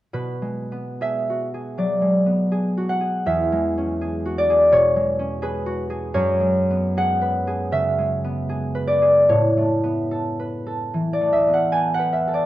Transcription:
0.13 3.32 B2 soft
0.13 4.04 B4 medium
0.42 2.00 G#3 soft
0.72 2.25 B3 soft
1.01 1.53 G#4 soft
1.01 2.31 E5 medium
1.30 2.76 F#4 soft
1.54 2.50 G#4 soft
1.78 5.68 F#3 soft
1.78 3.32 D5 soft
2.02 3.51 G#3 soft
2.26 6.16 B3 soft
2.52 2.99 G#4 soft
2.77 4.24 F#4 soft
2.89 6.79 F#5 medium
3.01 4.00 G#4 soft
3.26 6.16 E2 soft
3.26 7.17 E5 medium
3.52 4.95 G#3 soft
3.78 5.18 C#4 soft
4.01 4.49 G#4 soft
4.25 5.65 F#4 soft
4.38 4.98 D5 medium
4.50 5.41 G#4 soft
4.72 6.17 B2 soft
4.72 6.13 C#5 medium
4.96 6.39 G#3 soft
5.19 9.09 C#4 soft
5.42 5.89 G#4 soft
5.42 7.20 B4 medium
5.66 9.32 F#4 soft
5.90 6.96 G#4 soft
6.14 9.32 F#2 medium
6.14 9.28 C#5 medium
6.40 7.97 G#3 soft
6.71 8.23 B3 soft
6.97 7.46 G#4 soft
6.97 9.32 F#5 medium
7.22 8.74 B4 soft
7.47 8.48 G#4 soft
7.72 9.32 C#3 soft
7.72 11.32 E5 medium
7.98 9.32 G#3 soft
8.24 9.82 B3 soft
8.49 9.01 G#4 soft
8.75 10.38 B4 soft
8.87 9.57 D5 medium
9.02 9.32 G#4 soft
9.29 12.46 A2 soft
9.29 12.46 C#5 medium
9.57 11.20 A3 soft
9.84 11.47 B3 soft
10.11 10.65 A4 soft
10.40 11.98 B4 soft
10.67 11.71 A4 soft
10.94 12.46 E3 soft
11.13 11.47 D5 medium
11.21 12.46 A3 soft
11.33 11.66 E5 medium
11.48 12.46 B3 soft
11.54 11.87 F#5 medium
11.72 12.26 A4 soft
11.72 12.06 G#5 medium
11.94 12.28 F#5 medium
11.99 12.46 B4 soft
12.13 12.46 E5 medium
12.28 12.46 A4 soft
12.34 12.46 D5 medium

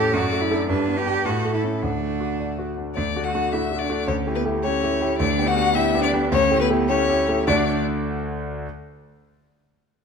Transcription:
0.00 0.12 A2 medium
0.00 0.15 A3 medium
0.00 0.11 C#4 medium
0.00 0.15 G4 loud
0.00 0.12 A4 medium
0.00 0.13 A4 medium
0.13 0.67 F#2 medium
0.13 0.43 F#4 loud
0.13 0.68 D5 loud
0.32 0.62 A3 medium
0.41 0.68 E4 loud
0.51 0.67 D4 medium
0.51 0.68 A4 medium
0.69 1.24 G2 medium
0.69 0.98 D4 loud
0.69 1.26 B4 medium
0.88 1.18 B3 medium
0.97 1.27 G4 loud
1.07 1.23 D4 medium
1.07 1.24 G4 medium
1.25 1.81 A2 medium
1.25 1.53 F#4 loud
1.25 1.83 A4 medium
1.45 1.75 A3 medium
1.54 1.62 E4 loud
1.64 1.81 C#4 medium
1.64 1.81 E4 medium
1.74 1.83 E4 medium
1.82 2.93 D2 medium
1.82 2.68 D4 medium
1.82 2.68 F#4 medium
2.02 2.32 A3 soft
2.21 2.51 F#4 medium
2.40 2.70 D5 medium
2.59 2.89 F#4 medium
2.78 2.97 D4 soft
2.95 3.15 D2 medium
2.95 3.05 D4 medium
2.95 3.26 D5 medium
3.16 3.32 A3 soft
3.16 3.33 D4 medium
3.16 3.33 F#4 medium
3.24 3.52 F#4 medium
3.24 3.53 F#5 medium
3.34 3.51 A3 medium
3.34 3.51 D4 medium
3.34 3.51 F#4 medium
3.52 3.69 A3 medium
3.52 3.70 D4 medium
3.52 3.61 E4 medium
3.52 3.70 F#4 medium
3.52 3.81 E5 medium
3.71 3.88 A3 medium
3.71 3.88 D4 medium
3.71 3.88 F#4 medium
3.79 4.10 D4 medium
3.79 4.07 D5 loud
3.89 4.06 A3 medium
3.89 4.06 D4 medium
3.89 4.06 F#4 medium
4.08 4.26 D2 medium
4.08 4.36 C#4 medium
4.08 4.16 C#5 medium
4.26 4.43 A3 medium
4.26 4.43 E4 medium
4.26 4.44 G4 medium
4.35 4.44 B3 medium
4.35 4.43 B4 medium
4.45 4.62 A3 medium
4.45 4.62 E4 medium
4.45 4.62 G4 medium
4.63 4.80 A3 medium
4.63 5.18 C#4 medium
4.63 4.80 E4 medium
4.63 4.81 G4 medium
4.63 5.18 C#5 loud
4.83 4.99 A3 medium
4.83 4.99 E4 medium
4.83 5.00 G4 medium
5.01 5.18 A3 medium
5.01 5.18 E4 medium
5.01 5.18 G4 medium
5.18 5.37 D2 medium
5.18 5.49 D4 medium
5.18 5.49 D5 loud
5.38 5.55 B3 medium
5.38 5.55 D4 medium
5.38 5.55 G4 medium
5.47 5.75 F#4 loud
5.47 5.76 F#5 loud
5.56 5.73 B3 medium
5.56 5.73 D4 medium
5.56 5.73 G4 medium
5.75 5.92 B3 medium
5.75 5.92 D4 medium
5.75 6.05 E4 medium
5.75 5.92 G4 medium
5.75 6.02 E5 loud
5.94 6.11 B3 medium
5.94 6.11 D4 medium
5.94 6.11 G4 medium
6.03 6.32 D4 loud
6.03 6.11 D5 loud
6.13 6.30 B3 medium
6.13 6.30 D4 medium
6.13 6.30 G4 medium
6.32 6.50 D2 loud
6.32 6.62 C#4 loud
6.32 6.60 C#5 loud
6.50 6.68 A3 medium
6.50 6.68 E4 medium
6.50 6.68 G4 medium
6.60 6.90 B3 loud
6.60 6.68 B4 loud
6.70 6.87 A3 medium
6.70 6.87 E4 medium
6.70 6.87 G4 medium
6.88 7.06 A3 medium
6.88 7.47 C#4 loud
6.88 7.07 E4 medium
6.88 7.07 G4 medium
6.88 7.46 C#5 loud
7.09 7.26 A3 medium
7.09 7.26 E4 medium
7.09 7.27 G4 medium
7.28 7.46 A3 medium
7.28 7.46 E4 medium
7.28 7.46 G4 medium
7.47 7.80 D2 medium
7.47 7.80 D3 medium
7.47 7.80 A3 medium
7.47 7.80 D4 loud
7.47 7.80 D4 medium
7.47 7.80 F#4 medium
7.47 7.80 D5 medium

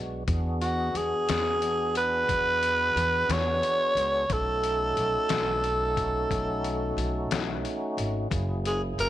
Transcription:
0.00 0.25 B1 medium
0.00 0.24 G#3 medium
0.00 0.24 B3 medium
0.00 0.24 D4 medium
0.00 0.23 F#4 medium
0.27 0.91 E2 medium
0.27 4.26 B3 medium
0.27 4.26 D4 medium
0.27 4.26 F#4 medium
0.27 4.26 G#4 medium
0.27 kick medium
0.27 closed hi-hat medium
0.62 0.99 F#4 medium
0.62 closed hi-hat medium
0.95 1.10 E2 medium
0.95 1.97 G#4 medium
0.95 closed hi-hat soft
1.29 2.25 E2 medium
1.29 snare loud
1.29 closed hi-hat medium
1.62 closed hi-hat medium
1.95 3.33 B4 loud
1.95 closed hi-hat medium
2.29 2.92 E2 medium
2.29 kick medium
2.29 closed hi-hat medium
2.63 closed hi-hat medium
2.95 3.27 E2 medium
2.95 closed hi-hat medium
3.29 3.60 E2 medium
3.29 4.34 C#5 loud
3.29 snare medium
3.29 closed hi-hat medium
3.63 closed hi-hat medium
3.95 4.27 C#2 medium
3.95 closed hi-hat medium
4.30 4.93 B1 medium
4.30 8.29 A3 medium
4.30 8.29 C#4 medium
4.30 8.29 D#4 medium
4.30 8.29 F#4 medium
4.30 7.67 A4 medium
4.30 kick medium
4.30 closed hi-hat medium
4.64 closed hi-hat medium
4.97 5.12 B1 medium
4.97 closed hi-hat soft
5.29 6.27 B1 medium
5.29 snare medium
5.29 closed hi-hat medium
5.64 closed hi-hat soft
5.97 kick medium
5.97 closed hi-hat soft
6.31 6.94 B1 medium
6.31 kick medium
6.31 closed hi-hat medium
6.64 closed hi-hat soft
6.97 7.28 B1 medium
6.97 closed hi-hat soft
7.31 7.62 B1 medium
7.31 snare medium
7.31 closed hi-hat medium
7.65 closed hi-hat soft
7.97 8.29 G#1 medium
7.97 closed hi-hat medium
8.30 8.95 F#1 medium
8.30 9.09 A#3 medium
8.30 9.09 C#4 medium
8.30 9.09 E4 medium
8.30 9.09 G#4 medium
8.30 kick medium
8.30 closed hi-hat medium
8.65 8.82 G#4 medium
8.65 closed hi-hat medium
8.98 9.09 F#1 medium
8.98 9.09 A#4 medium
8.98 closed hi-hat medium

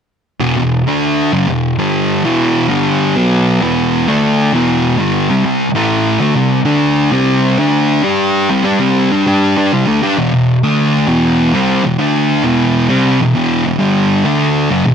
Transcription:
0.40 0.55 E2 medium
0.40 0.55 B2 loud
0.57 0.81 E2 medium
0.57 0.81 B2 medium
0.87 1.32 D3 medium
0.87 1.32 A3 medium
0.87 1.32 D4 loud
1.32 1.47 F#2 medium
1.32 1.47 C#3 medium
1.48 1.73 E2 medium
1.48 1.73 B2 medium
1.79 2.23 G2 medium
1.79 2.24 D3 medium
1.79 2.24 G3 loud
2.25 2.69 E2 medium
2.25 2.69 B2 medium
2.25 2.70 E3 loud
2.69 3.14 G2 medium
2.69 3.15 D3 medium
2.69 3.15 G3 medium
3.16 3.60 B2 medium
3.16 3.61 F#3 loud
3.16 3.61 B3 medium
3.61 4.06 E2 medium
3.61 4.06 B2 medium
3.61 4.07 E3 medium
4.07 4.52 D3 medium
4.07 4.52 A3 medium
4.07 4.53 D4 medium
4.53 4.97 E2 medium
4.53 4.98 B2 medium
4.53 4.98 E3 medium
4.98 5.28 G2 medium
4.98 5.28 D3 loud
4.98 5.29 G3 medium
5.30 5.43 C3 medium
5.30 5.44 G3 loud
5.44 5.69 C3 medium
5.44 5.69 G3 medium
5.75 6.20 A2 loud
5.75 6.20 E3 medium
5.75 6.20 A3 loud
6.20 6.35 D3 medium
6.20 6.35 A3 loud
6.36 6.60 C3 medium
6.36 6.60 G3 medium
6.65 7.11 D3 medium
6.65 7.11 A3 medium
6.65 7.11 D4 medium
7.12 7.57 C3 loud
7.12 7.57 G3 medium
7.12 7.57 C4 loud
7.59 8.03 D3 medium
7.59 8.03 A3 medium
7.59 8.02 D4 medium
8.03 8.48 G3 medium
8.03 8.48 D4 medium
8.03 8.49 G4 medium
8.50 8.64 C3 medium
8.50 8.63 G3 medium
8.65 8.79 G3 medium
8.65 8.79 D4 loud
8.80 9.09 C3 medium
8.80 9.10 G3 medium
8.80 9.10 C4 medium
9.12 9.25 G3 medium
9.12 9.25 D4 medium
9.27 9.55 G3 medium
9.27 9.56 D4 medium
9.27 9.56 G4 medium
9.57 9.70 G3 medium
9.57 9.71 D4 loud
9.73 9.86 C3 medium
9.73 9.86 G3 medium
9.87 10.01 D3 medium
9.87 10.01 A3 medium
10.03 10.16 G3 medium
10.03 10.17 D4 loud
10.17 10.31 E2 medium
10.17 10.32 B2 loud
10.34 10.57 E2 medium
10.34 10.57 B2 medium
10.63 11.07 D3 medium
10.63 11.07 A3 loud
10.63 11.07 D4 loud
11.07 11.52 E2 medium
11.07 11.52 B2 loud
11.07 11.52 E3 medium
11.54 11.83 C3 medium
11.54 11.83 G3 loud
11.54 11.83 C4 loud
11.84 11.99 E2 medium
11.84 11.99 B2 medium
11.99 12.43 D3 loud
11.99 12.43 A3 loud
11.99 12.44 D4 loud
12.44 12.89 E2 medium
12.44 12.89 B2 medium
12.44 12.89 E3 medium
12.89 13.19 C3 medium
12.89 13.19 G3 medium
12.89 13.19 C4 medium
13.21 13.34 E2 medium
13.21 13.34 B2 medium
13.35 13.64 E2 medium
13.35 13.64 B2 medium
13.35 13.64 E3 medium
13.65 13.79 E2 medium
13.65 13.80 B2 medium
13.80 14.24 G2 loud
13.80 14.24 D3 loud
13.80 14.25 G3 loud
14.25 14.70 D3 medium
14.25 14.70 A3 medium
14.25 14.70 D4 medium
14.70 14.85 F#2 medium
14.70 14.85 C#3 medium
14.85 14.95 E2 medium
14.85 14.95 B2 medium

